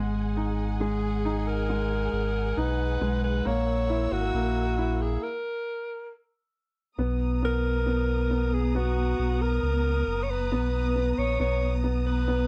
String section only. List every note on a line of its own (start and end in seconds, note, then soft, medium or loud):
0.00 3.42 G#4 medium
0.00 5.18 F#5 soft
0.00 3.42 G#5 medium
3.45 5.20 A#4 soft
3.45 5.20 E6 medium
6.98 12.47 B3 medium
6.98 12.47 A#5 soft
6.98 12.47 D#6 medium